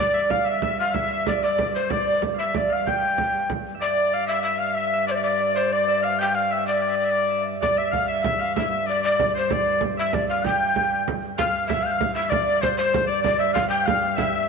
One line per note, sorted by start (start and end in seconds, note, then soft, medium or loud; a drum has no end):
0.00 3.81 G2 medium
0.00 0.13 D5 medium
0.00 0.32 D5 medium
0.00 0.36 E5 medium
0.09 0.19 D5 medium
0.14 0.21 E5 medium
0.19 1.26 D5 medium
0.30 0.46 F5 medium
0.30 0.52 F5 medium
0.30 0.51 F5 medium
0.30 frame drum medium
0.45 0.62 E5 medium
0.49 0.79 E5 medium
0.62 0.77 E5 medium
0.62 0.93 E5 medium
0.62 frame drum medium
0.78 0.97 F5 medium
0.78 0.95 F5 medium
0.78 frame drum soft
0.94 1.10 E5 medium
0.94 1.26 E5 medium
0.94 1.45 E5 medium
0.94 frame drum medium
1.08 2.38 E5 medium
1.08 1.17 F5 medium
1.26 1.43 D5 medium
1.26 1.33 D5 medium
1.26 frame drum medium
1.43 1.90 D5 medium
1.43 1.73 D5 medium
1.43 1.59 D5 medium
1.58 1.67 D5 medium
1.58 frame drum medium
1.74 1.92 C5 medium
1.74 1.93 C5 medium
1.74 frame drum soft
1.90 2.22 D5 medium
1.90 2.55 D5 medium
1.90 2.23 D5 loud
1.90 frame drum medium
2.22 frame drum medium
2.34 2.53 E5 medium
2.34 2.45 F5 medium
2.39 2.76 E5 medium
2.39 2.58 E5 medium
2.54 3.80 D5 medium
2.54 2.75 D5 medium
2.54 frame drum medium
2.70 3.81 F5 medium
2.70 2.85 F5 medium
2.70 2.90 F5 medium
2.70 frame drum soft
2.86 4.42 G5 medium
2.86 3.46 G5 medium
2.86 3.51 G5 loud
2.86 frame drum medium
3.03 frame drum soft
3.18 frame drum medium
3.34 frame drum soft
3.50 frame drum medium
3.66 frame drum soft
3.75 4.19 E5 medium
3.80 7.62 G2 medium
3.80 5.08 D5 medium
3.80 4.25 D5 medium
3.80 4.15 D5 medium
4.13 4.35 F5 medium
4.13 4.28 F5 medium
4.26 4.57 E5 medium
4.26 4.42 E5 loud
4.26 4.45 E5 medium
4.43 4.59 E5 medium
4.43 4.66 E5 medium
4.58 4.76 F5 medium
4.58 4.83 F5 medium
4.74 5.07 E5 loud
4.74 5.06 E5 medium
4.74 4.93 E5 medium
4.93 5.88 E5 medium
5.07 5.17 C5 medium
5.07 5.15 D5 medium
5.07 5.16 D5 medium
5.07 5.12 D5 medium
5.15 5.23 D5 medium
5.15 5.22 D5 medium
5.15 5.23 D5 medium
5.23 5.40 D5 medium
5.23 5.68 D5 medium
5.23 5.53 D5 loud
5.40 5.71 D5 medium
5.55 7.53 C5 medium
5.55 5.74 C5 medium
5.71 6.66 D5 medium
5.71 6.02 D5 medium
5.71 6.06 D5 loud
5.88 6.08 E5 medium
6.02 6.57 F5 medium
6.02 6.21 F5 medium
6.02 6.20 F5 loud
6.18 7.74 G5 medium
6.18 6.35 G5 medium
6.18 6.36 G5 loud
6.35 6.54 F5 loud
6.35 6.52 F5 medium
6.51 7.30 E5 medium
6.51 6.66 E5 medium
6.51 6.67 E5 medium
6.67 6.76 D5 medium
6.67 7.60 D5 medium
6.67 7.42 D5 loud
6.74 6.83 E5 medium
6.81 6.90 D5 medium
6.89 6.97 E5 medium
6.95 7.06 D5 medium
7.04 7.13 E5 medium
7.11 7.45 D5 medium
7.30 7.76 E5 medium
7.61 11.37 G2 medium
7.61 9.04 D5 medium
7.61 7.79 D5 medium
7.61 7.80 D5 medium
7.61 frame drum medium
7.77 7.97 E5 medium
7.77 7.90 E5 medium
7.77 7.94 E5 medium
7.91 8.07 F5 medium
7.91 8.14 F5 medium
7.91 8.11 F5 medium
7.91 frame drum medium
8.08 8.23 E5 medium
8.08 8.45 E5 medium
8.08 8.43 E5 loud
8.24 8.53 E5 medium
8.24 frame drum medium
8.39 8.62 F5 medium
8.39 8.56 F5 medium
8.39 frame drum soft
8.55 8.70 E5 medium
8.55 9.97 E5 medium
8.55 8.86 E5 loud
8.55 frame drum medium
8.70 8.88 E5 medium
8.86 9.01 D5 medium
8.86 9.03 D5 medium
9.01 9.31 D5 medium
9.01 9.33 D5 loud
9.01 9.48 D5 medium
9.19 frame drum loud
9.34 9.53 C5 medium
9.34 11.33 C5 medium
9.34 9.54 C5 medium
9.34 frame drum soft
9.49 10.13 D5 medium
9.49 9.82 D5 medium
9.49 9.83 D5 medium
9.49 frame drum medium
9.81 frame drum medium
9.97 10.36 E5 medium
9.97 10.12 E5 medium
9.97 10.16 E5 medium
10.13 11.98 D5 medium
10.13 10.29 D5 medium
10.13 frame drum loud
10.29 10.43 F5 medium
10.29 10.47 F5 medium
10.29 11.37 F5 medium
10.29 frame drum soft
10.44 11.07 G5 medium
10.44 12.01 G5 medium
10.44 11.03 G5 loud
10.44 frame drum medium
10.76 frame drum medium
10.92 frame drum soft
11.08 frame drum medium
11.38 14.49 G2 medium
11.38 11.51 F5 medium
11.38 11.67 F5 medium
11.38 11.67 F5 loud
11.38 frame drum loud
11.51 11.74 F5 medium
11.67 11.85 E5 medium
11.67 11.91 E5 medium
11.67 11.84 E5 medium
11.67 frame drum medium
11.82 11.88 F5 medium
11.82 12.14 F5 loud
11.82 11.98 F5 medium
11.82 11.93 G5 medium
11.82 frame drum soft
11.92 11.98 F5 medium
11.98 12.06 F5 medium
11.98 12.21 F5 medium
11.98 frame drum loud
12.15 13.61 E5 medium
12.15 12.31 E5 loud
12.15 12.28 E5 medium
12.15 frame drum soft
12.29 12.63 D5 medium
12.29 12.62 D5 loud
12.29 13.09 D5 medium
12.29 frame drum loud
12.61 12.77 C5 medium
12.61 12.69 C5 loud
12.61 frame drum medium
12.78 13.06 C5 medium
12.78 13.10 C5 loud
12.78 14.49 C5 medium
12.78 frame drum soft
12.94 frame drum medium
13.07 13.21 D5 medium
13.07 13.24 D5 medium
13.07 13.25 D5 medium
13.07 frame drum soft
13.22 13.38 D5 medium
13.22 13.42 D5 loud
13.22 14.49 D5 medium
13.22 frame drum medium
13.38 13.52 E5 medium
13.38 13.54 E5 loud
13.53 13.61 F5 loud
13.53 13.69 F5 loud
13.53 13.85 F5 medium
13.53 frame drum medium
13.70 13.88 G5 loud
13.70 13.87 G5 loud
13.70 14.49 G5 loud
13.70 frame drum soft
13.85 14.22 F5 medium
13.85 14.18 F5 medium
13.85 14.17 F5 loud
13.85 frame drum loud
14.02 frame drum soft
14.16 14.47 E5 loud
14.16 14.47 E5 medium
14.16 14.49 E5 loud
14.16 frame drum medium
14.33 frame drum soft